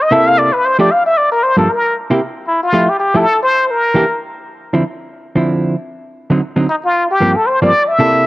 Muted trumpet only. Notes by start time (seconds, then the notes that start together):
0.02 D#5
0.12 E5
0.27 F5
0.38 D5
0.53 B4
0.65 C5
0.80 D5
0.91 F5
1.06 E5
1.17 D5
1.32 A#4
1.43 C5
1.58 A4
1.70 A#4
2.47 E4
2.63 F4
2.89 G4
3.00 G4
3.17 A4
3.43 C5
3.70 A#4
6.69 D#4
6.85 F4
7.11 G4
7.36 A4
7.47 C5
7.62 D5
7.88 E5